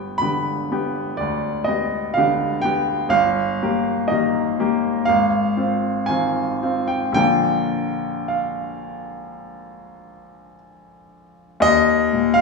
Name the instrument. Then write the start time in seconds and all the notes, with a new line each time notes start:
grand piano
Already playing: G1 B3 G4 G5
0.18 D3 B3 B5
0.22 G4
0.72 B3 G4
1.17 D2 D5
1.64 B3 G4 D#5
2.14 D3 B3 F5
2.18 G4
2.62 B3 G4 G5
3.09 G1 F5
3.63 A#3 G4
4.08 D#3 A#3 D#5
4.12 G4
4.60 A#3 G4
5.05 G#1 F5
5.57 C4 F4
6.06 D#3 C4 G#5
6.10 F4
6.63 C4 F4
6.88 G5
7.12 A#1 D3 A#3 G5
7.16 F4
8.28 F5
11.60 D#2 D#5
12.13 A#2
12.34 F5